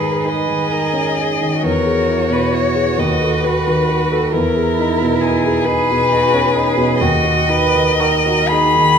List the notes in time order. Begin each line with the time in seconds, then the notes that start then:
Already playing: G#2 D#3 D#4 G#4 A#4 B4
0.02 G#4
0.24 D#4 G#4 B4 D#5
0.48 D#3
0.71 D#4 A#4
0.94 C#4
1.16 D#4 G#4
1.41 D#3
1.62 E2 F#4 A#4 C#5
1.86 G#4
2.09 E4
2.30 B2 B4
2.52 E4 C#5
2.75 G#4
2.98 D#2 B4 D#5
3.22 A4
3.44 F#4 B4
3.67 D#3
3.89 F#4
4.12 A4
4.31 E2 E4 A#4
4.56 G#4
4.79 D#4
5.02 B2
5.21 D#4 G#4
5.46 G#4
5.65 D#4 G#4 B4
5.91 B2
6.12 D#4 F#4
6.34 C#4
6.56 D#4 G#4
6.77 B2
6.98 D#2 F#4 D#5
7.24 F#4
7.48 D#4 B4
7.75 D#3
7.99 D#4 F#4 A#4
8.26 F#4
8.48 D#4 G#4 B5
8.75 D#3